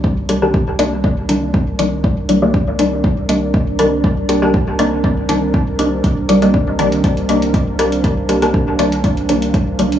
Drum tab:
HH |--x---x---x---x-|--x---x---x---x-|--x---x---x---x-|x-xx--xxxxxxx-xx|
BD |o---o---o---o---|o---o---o---o---|o---o---o---o---|o---o---o---o---|

HH |x-xx--xxxxxxx-xx|
BD |o---o---o---o---|